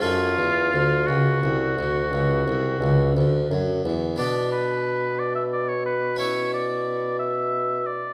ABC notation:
X:1
M:12/8
L:1/16
Q:3/8=59
K:F#m
V:1 name="Oboe"
^E6 F12 z6 | [K:Bm] d2 B4 d e d c B2 c2 d4 e4 d2 |]
V:2 name="Harpsichord"
[A,C]2 z16 z6 | [K:Bm] [B,D]12 [CE]12 |]
V:3 name="Harpsichord" clef=bass
F,,2 E,,2 D,,2 C,,2 ^B,,,2 D,,2 C,,2 B,,,2 C,,2 D,,2 F,,2 E,,2 | [K:Bm] B,,24 |]
V:4 name="Bassoon" clef=bass
F,,2 E,,2 D,,2 C,,2 ^B,,,2 D,,2 C,,2 B,,,2 C,,2 D,,2 F,,2 E,,2 | [K:Bm] B,,24 |]